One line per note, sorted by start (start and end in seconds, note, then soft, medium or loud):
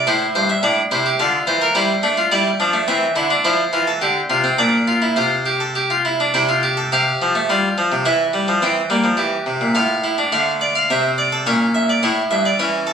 0.07 0.25 A2 medium
0.07 0.62 E4 medium
0.07 0.25 C5 medium
0.35 0.53 G2 medium
0.35 0.49 C5 medium
0.49 0.63 E5 medium
0.63 0.80 A2 medium
0.63 0.80 D4 medium
0.63 0.80 D5 medium
0.91 1.09 C3 medium
0.91 1.09 E4 medium
0.91 1.05 C5 medium
1.06 1.19 G4 medium
1.20 1.37 D3 medium
1.20 1.74 F4 medium
1.20 1.37 A4 medium
1.47 1.65 E3 medium
1.47 1.61 C5 medium
1.62 1.75 A#4 medium
1.75 1.93 G3 medium
1.75 1.93 E4 medium
1.75 2.30 C5 medium
2.03 2.21 A3 medium
2.03 2.17 D4 medium
2.17 2.31 F4 medium
2.32 2.49 G3 medium
2.32 2.49 E4 medium
2.32 2.86 D5 medium
2.60 2.77 F3 medium
2.60 2.73 D4 medium
2.73 2.87 A3 medium
2.88 3.05 E3 medium
2.88 3.05 C4 medium
2.88 3.43 E5 medium
3.16 3.33 D3 medium
3.16 3.30 E4 medium
3.30 3.44 D4 medium
3.45 3.62 F3 medium
3.45 3.62 E4 medium
3.45 4.56 C5 medium
3.73 3.90 E3 medium
3.73 3.87 F4 medium
3.87 4.01 A4 medium
4.02 4.19 D3 medium
4.02 4.19 G4 medium
4.30 4.48 C3 medium
4.30 4.44 F4 medium
4.44 4.58 C4 medium
4.59 5.15 A#2 medium
4.59 4.77 D4 medium
4.59 5.15 D5 medium
4.88 5.02 F4 medium
5.02 5.16 E4 medium
5.16 6.31 C3 medium
5.16 5.35 F4 medium
5.16 6.30 C5 medium
5.46 5.60 G4 medium
5.60 5.75 A4 medium
5.75 5.90 G4 medium
5.90 6.05 F4 medium
6.05 6.19 E4 soft
6.20 6.34 D4 medium
6.34 6.90 C3 medium
6.34 6.48 E4 medium
6.34 6.91 G5 medium
6.49 6.63 F4 medium
6.63 6.77 G4 medium
6.77 6.92 A4 medium
6.92 7.10 C3 medium
6.92 7.48 G4 medium
6.92 8.03 F5 medium
7.22 7.35 F3 medium
7.35 7.49 A3 medium
7.50 7.67 G3 medium
7.50 8.04 F4 medium
7.78 7.91 F3 medium
7.92 8.05 C3 medium
8.05 8.23 E3 medium
8.05 8.60 E4 medium
8.05 8.60 E5 medium
8.33 8.47 G3 medium
8.48 8.62 F3 medium
8.62 8.80 E3 medium
8.62 8.80 C4 medium
8.62 9.72 G5 medium
8.90 9.04 G3 loud
8.90 9.08 A#3 medium
9.04 9.18 F3 medium
9.17 9.35 E3 medium
9.17 9.73 G4 medium
9.46 9.60 C3 medium
9.61 9.75 A#2 loud
9.75 10.31 A2 medium
9.75 9.93 F4 medium
9.75 10.31 F5 medium
10.04 10.18 E4 medium
10.18 10.32 D4 medium
10.32 10.88 D3 medium
10.32 10.88 A3 medium
10.32 10.50 F5 medium
10.61 10.75 D5 medium
10.75 10.89 F5 medium
10.90 11.45 C3 medium
10.90 11.45 C4 medium
10.90 11.08 E5 medium
11.18 11.32 D5 medium
11.32 11.46 A4 medium
11.47 12.01 A#2 medium
11.47 12.01 C#4 medium
11.47 11.64 C#5 medium
11.75 11.88 E5 medium
11.89 12.03 D5 medium
12.03 12.21 A2 medium
12.03 12.58 E4 medium
12.03 12.20 C#5 medium
12.31 12.48 G2 medium
12.31 12.45 E5 medium
12.45 12.59 D5 medium
12.59 12.93 E3 medium
12.59 12.93 C#4 medium
12.59 12.77 C#5 medium
12.87 12.93 A4 medium